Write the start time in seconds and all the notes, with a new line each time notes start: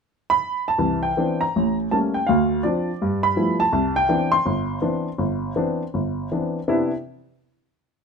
0.30 B5
0.68 A5
0.78 C2 E3
1.03 G5
1.17 E3 B3 C4 D4
1.41 A#5
1.56 A1
1.91 G3 A3 A#3 C#4 A5
2.14 G5
2.27 D2 F5
2.63 F3 C4 D4 D5
3.02 G2
3.23 B5
3.36 F3 G3 A3 B3 E4
3.60 A5
3.73 C2
3.96 G5
4.09 E3 B3 C4 D4
4.32 C6
4.46 G1
4.82 E3 B3 C4 D4
5.18 G1
5.56 E3 B3 C4 D4
5.94 G1
6.32 E3 B3 C4 D4
6.68 C3 B3 D4 E4